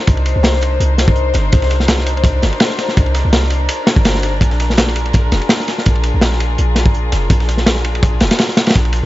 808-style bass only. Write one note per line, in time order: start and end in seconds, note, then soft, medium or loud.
0.08 0.34 C2 loud
0.36 0.79 C2 medium
0.80 1.33 C2 loud
1.35 1.51 G1 medium
1.53 2.23 C2 loud
2.24 2.41 C2 medium
2.43 2.52 G1 medium
2.97 3.23 C2 loud
3.25 3.68 C2 loud
3.96 4.40 G1 loud
4.41 5.12 A#1 loud
5.14 5.30 A#1 medium
5.32 5.41 F1 loud
5.86 6.13 A#1 loud
6.14 6.57 A#1 medium
6.59 7.11 A#1 loud
7.13 7.29 F1 medium
7.30 8.01 A#1 loud
8.03 8.19 A#1 medium
8.21 8.30 F1 medium
8.76 9.02 A#1 loud